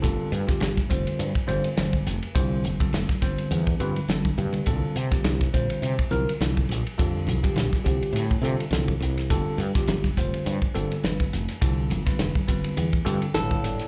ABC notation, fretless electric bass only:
X:1
M:4/4
L:1/16
Q:"Swing 16ths" 1/4=104
K:Gdor
V:1 name="Fretless electric bass" clef=bass
G,,, z G,, z G,,,2 F,,, z G,, z G,,, z G,,,2 F,,, z | C,,2 G,,, z F,,, z G,,, z E,,2 G,, z G,,,2 G,,2 | C,, z C, z C,,2 B,,, z C, z C,, z C,,2 B,,, z | F,,2 C,, z B,,, z C,, z A,,2 C, z C,,2 C,,2 |
G,,, z G,, z G,,,2 F,,, z G,, z G,,, z G,,,2 F,,, z | C,,2 G,,, z F,,, z G,,, z E,,2 G,, z G,,,2 G,,, z |]